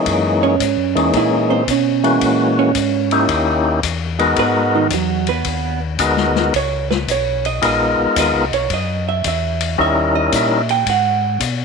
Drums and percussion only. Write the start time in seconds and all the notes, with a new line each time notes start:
0.06 kick, ride
0.60 kick, hi-hat pedal, ride
0.97 ride
1.13 kick, ride
1.68 kick, hi-hat pedal, ride
2.04 ride
2.21 kick, ride
2.75 kick, hi-hat pedal, ride
3.11 ride
3.29 kick, ride
3.83 kick, hi-hat pedal, ride
4.19 ride
4.36 kick, ride
4.90 kick, hi-hat pedal, ride
5.27 ride
5.45 kick, ride
5.99 kick, hi-hat pedal, ride
6.17 snare
6.36 snare
6.54 kick, ride
6.91 snare
7.08 kick, hi-hat pedal, ride
7.45 ride
7.62 kick, ride
8.16 kick, hi-hat pedal, ride
8.53 ride
8.70 kick, ride
9.24 kick, hi-hat pedal, ride
9.61 ride
9.78 kick
10.32 kick, hi-hat pedal, ride
10.69 ride
10.86 kick, ride
11.40 kick, hi-hat pedal, ride